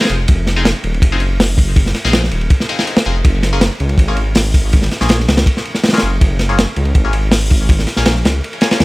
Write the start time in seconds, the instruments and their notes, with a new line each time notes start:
0.00 synth stab C4 D#4 F4 G#4, snare, ride
0.05 snare, ride
0.09 detuned saw bass F1, ride
0.28 detuned saw bass F1, kick, ride
0.47 snare, ride
0.56 synth stab C4 D#4 F4 G#4
0.65 snare, ride
0.84 detuned saw bass D#1, ride
0.94 ride
1.02 detuned saw bass F#1, kick, ride
1.12 synth stab C4 D#4 F4 G#4
1.20 ride
1.40 snare, open hi-hat
1.58 kick, ride
1.76 kick, ride
1.86 snare
1.95 snare, ride
2.05 detuned saw bass A#1, synth stab C4 D#4 F4 G#4, snare
2.13 snare, ride
2.24 snare
2.31 detuned saw bass D#1, ride
2.41 ride
2.50 kick, ride
2.60 snare
2.69 synth stab C4 D#4 F4 G#4, ride
2.79 synth stab C4 D#4 F4 G#4, snare
2.87 ride
2.97 snare
3.05 detuned saw bass F1, synth stab C4 D#4 F4 G#4, ride
3.25 detuned saw bass F#1, kick, ride
3.43 snare, ride
3.53 synth stab A#3 C#4 F4 G#4
3.61 snare, ride
3.80 detuned saw bass C#2, ride
3.89 ride
3.98 detuned saw bass G#1, kick, ride
4.08 synth stab A#3 C#4 F4 G#4
4.17 ride
4.35 snare, open hi-hat
4.54 kick, ride
4.73 kick, ride
4.82 snare
4.91 snare, ride
5.01 detuned saw bass A#1, synth stab A#3 C#4 F4 G#4, snare
5.09 snare, ride
5.20 snare
5.28 detuned saw bass C#2, snare, ride
5.37 snare, ride
5.46 kick, ride
5.57 snare
5.65 ride
5.75 snare
5.84 snare, ride
5.88 snare, ride
5.93 synth stab A#3 C#4 F4 G#4, snare, ride
5.97 snare, ride
6.02 detuned saw bass F#1, ride
6.21 detuned saw bass F#1, kick, ride
6.39 snare, ride
6.49 synth stab A#3 C#4 F4 G#4
6.58 snare, ride
6.76 detuned saw bass C#2, ride
6.85 ride
6.95 detuned saw bass G#1, kick, ride
7.05 synth stab A#3 C#4 F4 G#4
7.13 ride
7.32 snare, open hi-hat
7.50 kick, ride
7.69 kick, ride
7.79 snare
7.87 snare, ride
7.97 detuned saw bass A#1, synth stab A#3 C#4 F4 G#4, snare
8.05 snare, ride
8.15 snare
8.24 detuned saw bass C#2, snare, ride
8.44 ride
8.53 ride
8.61 synth stab A#3 C#4 F4 G#4, snare, ride
8.71 synth stab A#3 C#4 F4 G#4, snare, ride
8.80 detuned saw bass D#2, snare, ride